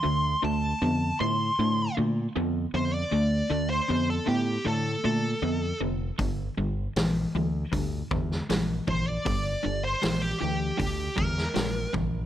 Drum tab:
HH |----------------|----------------|o---o---o---o---|o---o---o---o---|
SD |----------------|----------------|----o------oo---|----o------oo---|
BD |----------------|----------------|o-------o-o---o-|o-------o-o---o-|